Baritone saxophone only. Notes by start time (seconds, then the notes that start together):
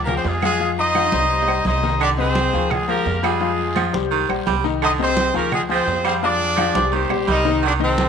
2.00 D3
2.54 D#3
2.88 F3
3.23 G3
3.75 F3
4.11 D#3
4.47 G3
4.82 D3
5.35 D#3
5.71 F3
6.04 G3
6.56 F3
6.92 D#3
7.27 G3
7.63 D#3
7.99 D3